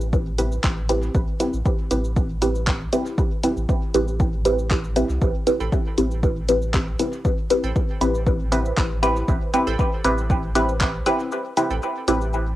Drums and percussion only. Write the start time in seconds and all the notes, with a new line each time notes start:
0.01 cabasa
0.13 kick, cabasa
0.38 closed hi-hat, cabasa
0.52 cabasa
0.64 kick, clap, cabasa
0.89 closed hi-hat, cabasa
1.02 cabasa
1.15 kick, cabasa
1.40 closed hi-hat, cabasa
1.53 cabasa
1.65 kick, cabasa
1.91 closed hi-hat, cabasa
2.04 cabasa
2.16 kick, cabasa
2.42 closed hi-hat, cabasa
2.55 cabasa
2.67 kick, clap, cabasa
2.93 closed hi-hat, cabasa
3.06 cabasa
3.18 kick, cabasa
3.44 closed hi-hat, cabasa
3.57 cabasa
3.69 kick, cabasa
3.94 closed hi-hat, cabasa
4.08 cabasa
4.20 kick, cabasa
4.45 closed hi-hat, cabasa
4.59 cabasa
4.71 kick, clap, cabasa
4.84 cabasa
4.96 closed hi-hat, cabasa
5.09 cabasa
5.22 kick, cabasa
5.47 closed hi-hat, cabasa
5.60 cabasa
5.72 kick, cabasa
5.98 closed hi-hat, cabasa
6.11 cabasa
6.23 kick, cabasa
6.49 closed hi-hat, cabasa
6.62 cabasa
6.74 kick, clap, cabasa
6.99 closed hi-hat, cabasa
7.13 cabasa
7.25 kick, cabasa
7.50 closed hi-hat, cabasa
7.64 cabasa
7.76 kick, cabasa
8.01 closed hi-hat, cabasa
8.14 cabasa
8.27 kick, cabasa
8.52 closed hi-hat, cabasa
8.65 cabasa
8.77 kick, clap, cabasa
9.03 closed hi-hat, cabasa
9.16 cabasa
9.28 kick, cabasa
9.54 closed hi-hat, cabasa
9.67 cabasa
9.79 kick, cabasa
10.04 closed hi-hat, cabasa
10.18 cabasa
10.30 kick, cabasa
10.55 closed hi-hat, cabasa
10.69 cabasa
10.81 kick, clap, cabasa
11.06 closed hi-hat, cabasa
11.20 cabasa
11.32 cabasa
11.57 closed hi-hat, cabasa
11.70 cabasa
11.82 cabasa
12.08 closed hi-hat, cabasa
12.21 cabasa
12.33 cabasa